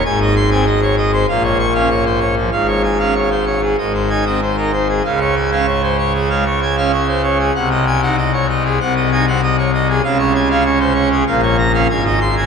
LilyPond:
<<
  \new Staff \with { instrumentName = "Pipe organ" } { \time 4/4 \key des \major \tempo 4 = 96 << { aes''16 ees''16 c'''16 aes''16 ees''16 des''16 ees''16 c''16 f''16 des''16 des'''16 f''16 des''16 c''16 des''16 f16 | f''16 des''16 aes''16 f''16 des''16 c''16 des''16 aes'16 ees''16 c''16 aes''16 ees''16 c''16 bes'16 c''16 aes'16 | f''16 des''16 aes''16 f''16 des''16 c''16 des''16 aes'16 f''16 des''16 aes''16 f''16 des''16 c''16 des''16 aes'16 | ges''16 ees''16 aes''16 ges''16 ees''16 des''16 ees''16 aes'16 ges''16 ees''16 aes''16 ges''16 ees''16 des''16 ees''16 aes'16 |
f''16 des''16 aes''16 f''16 des''16 c''16 des''16 aes'16 f''16 des''16 bes''16 f''16 aes''16 ees''16 c'''16 aes''16 | } \\ { aes,8. c'16 r4 bes,8. des'16 r4 | aes,8. des'16 r4 aes,8 ees'16 c'16 r16 ees'16 r8 | des8. des'16 r4 aes16 r8 des'16 r4 | c8. ees'16 r4 c8 ees'16 c'16 r4 |
des8. des'16 r4 bes,8. des'16 aes,8. aes16 | } >> }
  \new Staff \with { instrumentName = "Pipe organ" } { \clef bass \time 4/4 \key des \major aes,,2 bes,,2 | aes,,2 aes,,2 | des,1 | c,2 c,2 |
des,2 bes,,4 aes,,4 | }
>>